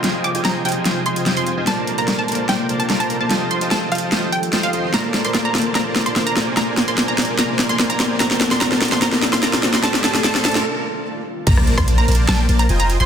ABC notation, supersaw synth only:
X:1
M:4/4
L:1/16
Q:1/4=147
K:Bb
V:1 name="Supersaw synth"
[Fceg_a]3 [Fcega]3 [Fcega]2 [Fcega]2 [Fcega]2 [Fcega]3 [Fcega] | [B,Bcda]3 [B,Bcda]3 [B,Bcda]2 [B,Bcdg]2 [B,Bcda]2 [B,Bcdb]3 [B,Bcda] | [Fcega]3 [Fcega]3 [Fcega]2 [Fcega]2 z2 [Fcega] [Fcegc'] [Fcegc']2 | [B,Bcda]3 [B,Bcda]3 [B,Bcda]2 [B,Bcda]3 [B,Bcda]3 [B,Bcd_a]2 |
[B,Bcd_a]3 [B,Bcda]3 [B,Bcda]2 [B,Bcda]3 [B,Bcda]3 [B,Bcda]2 | [B,Bcda]3 [B,Bcda] [B,Bcda]3 [B,Bcda] [B,Bcda]3 [B,Bcda] [B,Bcda]3 [B,Bcda] | [A,Acda]2 [A,Acda]2 [A,Acda]2 [A,Acda]2 z8 | [B,Bcda]3 [B,Bcda]3 [B,Bcda]2 [B,Bcdg]2 [B,Bcda]2 [Fceg_a]3 [Fcega] |]